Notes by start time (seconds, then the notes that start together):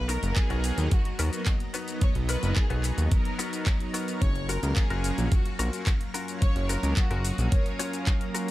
Already playing: B1 F#3 D#5 A#5
0.08 B3 D#4 F#4 A#4, open hi-hat, shaker
0.22 F#1 F#3 B3 D#4 A#4, closed hi-hat, shaker
0.36 G#4, kick, clap, closed hi-hat, shaker
0.50 B1 B3 D#4 F#4 A#4, closed hi-hat
0.64 open hi-hat, shaker
0.77 D#2 F#3 A#3 B3 D#4 A#4, closed hi-hat, shaker
0.91 F#4, kick, closed hi-hat, shaker
1.05 closed hi-hat
1.19 D#2 B3 D#4 F#4 A#4, open hi-hat, shaker
1.32 F#3 A#3 B3 D#4 A#4, closed hi-hat, shaker
1.46 kick, clap, closed hi-hat, shaker
1.60 closed hi-hat
1.74 B3 D#4 F#4 B4, open hi-hat, shaker
1.87 F#3 B3 D#4, closed hi-hat, shaker
2.01 B1 C#5 C#6, kick, closed hi-hat, shaker
2.15 B1, closed hi-hat
2.29 B3 D#4 F#4 A#4 B4, open hi-hat, shaker
2.43 F#1 F#3 A#3 B3 D#4 A#4, closed hi-hat, shaker
2.56 G#4, kick, clap, closed hi-hat, shaker
2.70 B1 B3 D#4 F#4 B4, closed hi-hat
2.84 clap, open hi-hat, shaker
2.97 D#2 F#3 B3 D#4 A#5, closed hi-hat, shaker
3.12 A#4, kick, closed hi-hat, shaker
3.25 closed hi-hat
3.39 B3 D#4 F#4 A#4, open hi-hat, shaker
3.53 closed hi-hat, shaker
3.66 kick, clap, closed hi-hat, shaker
3.80 closed hi-hat
3.94 B3 D#4 F#4 A#4, open hi-hat, shaker
4.08 closed hi-hat, shaker
4.22 F#1 C#5 F5, kick, closed hi-hat, shaker
4.36 closed hi-hat
4.49 C#4 F4 F#4 A#4, open hi-hat, shaker
4.62 C#2 F#3 A#3 C#4 A#4 F5, closed hi-hat, shaker
4.76 G#4, kick, clap, closed hi-hat, shaker
4.90 F#1 C#4 F4 F#4 A#4, closed hi-hat
5.04 open hi-hat, shaker
5.17 A#1 F#3 A#3 C#4 F4 A#4, closed hi-hat, shaker
5.32 F#4, kick, closed hi-hat, shaker
5.46 closed hi-hat
5.59 A#1 C#4 F4 F#4 A#4, open hi-hat, shaker
5.73 F#3 A#3 C#4 F4 A#4, closed hi-hat, shaker
5.87 kick, clap, closed hi-hat, shaker
6.01 closed hi-hat
6.14 C#4 F4 F#4 A#4, open hi-hat, shaker
6.28 F#3 A#3 C#4 C#5 F5, closed hi-hat, shaker
6.42 F#1 C#5 D#6, kick, closed hi-hat, shaker
6.56 F#1, closed hi-hat
6.69 C#4 F4 F#4 A#4, open hi-hat, shaker
6.83 C#2 F#3 A#3 C#4 F4 A#4, closed hi-hat, shaker
6.97 F#4, kick, clap, closed hi-hat, shaker
7.11 F#1 C#4 F4 F#4 A#4, closed hi-hat
7.25 open hi-hat, shaker
7.38 A#1 F#3 A#3 C#4 A#4 F5, closed hi-hat, shaker
7.52 C#5, kick, closed hi-hat, shaker
7.66 closed hi-hat
7.79 C#4 F4 F#4 C#5, open hi-hat, shaker
7.93 closed hi-hat, shaker
8.07 kick, clap, closed hi-hat, shaker
8.21 closed hi-hat
8.34 C#4 F4 F#4 A#4, open hi-hat, shaker